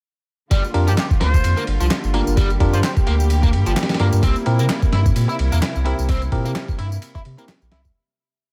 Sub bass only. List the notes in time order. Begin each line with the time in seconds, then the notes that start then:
0.51 G1
0.74 F2
0.88 G2
1.21 D2
1.44 F2
1.67 G1
1.80 C2
2.04 G1
2.27 G1
2.60 F2
2.73 G2
3.07 D2
3.53 G2
3.67 G1
4.00 G2
4.13 G2
4.23 C2
4.46 A#2
4.59 C3
4.93 G2
5.16 A#2
5.39 C2
5.52 E2
5.76 C2
5.99 C2
6.32 A#2
6.46 C3
6.79 G2
7.25 C3
7.62 A#1
7.72 C2